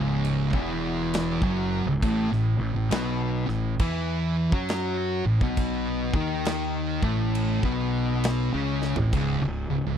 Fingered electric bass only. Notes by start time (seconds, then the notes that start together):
Already playing: C#1
0.53 E1
1.42 F#1
1.86 C#1
2.02 A1
2.32 A1
2.59 A1
2.76 A1
2.92 B1
3.48 A1
3.80 E2
4.52 F#2
5.25 A1
5.41 B1
6.14 D#2
7.03 A1
7.64 B1
8.55 C#2
8.97 A1
9.13 C#1
9.41 C#1
9.70 C#1
9.87 C#1